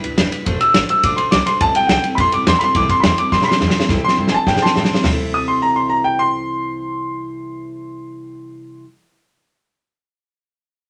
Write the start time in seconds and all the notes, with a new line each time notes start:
0.04 D2 D4 E4 B4, ride
0.17 E1 G3 D4 E4 B4, snare, ride
0.32 D4 E4 B4, muted upright bass stroke, snare, ride
0.45 F1 F3 A3 D4 A4 C5, kick, ride
0.59 D4 C5 E6, muted upright bass stroke, ride
0.74 A1 A3 D4 A4 C5, snare, ride
0.89 D4 A4 C5 E6, ride
1.03 A1 F3 A3 D4 A4 C5 D6, kick, ride
1.17 A1 D4 A4 C5 C6, ride
1.31 B1 A3 D4 A4 C5 D6, snare, ride
1.46 D4 A4 C5 C6, muted upright bass stroke, snare, ride
1.61 C2 C3 E3 G3 C4 E4 A4 A5, kick, ride
1.75 G3 C4 E4 A4 G5, muted upright bass stroke, ride
1.87 C2 G3 F#5, snare, ride
1.91 C4 E4 A4 G5
2.04 C4 E4 A4, muted upright bass stroke, ride
2.08 G3
2.15 F2 C3 B5, kick, ride
2.19 E3 G3 C4 E4 A4 C6
2.32 G2 C4 E4 A4 D6, ride
2.36 G3
2.46 E2 G3 C4 E4 A4 C6, snare, ride
2.59 C4 E4 A4 B5, muted upright bass stroke, snare, ride
2.63 G3 C6
2.75 C2 C3 E3 G3 C4 E4 A4 D6, kick, ride
2.89 G3 C4 E4 A4 C6, kick, ride
3.00 E2 G3 B5, snare, ride
3.05 C4 E4 A4 C6
3.17 G3 C4 E4 A4 D6, muted upright bass stroke, ride
3.32 C3 E3 G3 C4 E4 A4 C6, kick, snare
3.42 B5, snare
3.46 E2 G3 C4 E4 A4 C6
3.51 snare
3.60 E2 G3 C4 E4 A4, snare
3.70 snare
3.75 G3 C4 E4 A4, muted upright bass stroke
3.80 snare
3.89 C2 C3 E3 G3 C4 E4 A4, kick, snare
4.03 C4 E4 A4 C6
4.08 snare
4.18 G2 C3 E3 G3 C4 E4 A4
4.28 G#5, snare
4.32 A2 G3 C4 E4 A4 A5
4.47 A2 G3 C4 E4 A4 G5, kick, snare
4.57 snare
4.61 G3 C4 E4 A4 A5 C6
4.66 snare
4.76 A2 C3 E3 G3 C4 E4 A4, snare
4.85 snare
4.91 G3 C4 E4 A4, muted upright bass stroke, snare
5.03 C2 C3 E3, snare, floor tom, open hi-hat
5.07 G3 C4 E4
5.12 A4
5.34 D#6
5.48 C6
5.62 A#5
5.76 C6
5.90 A#5
6.04 G5
6.19 C6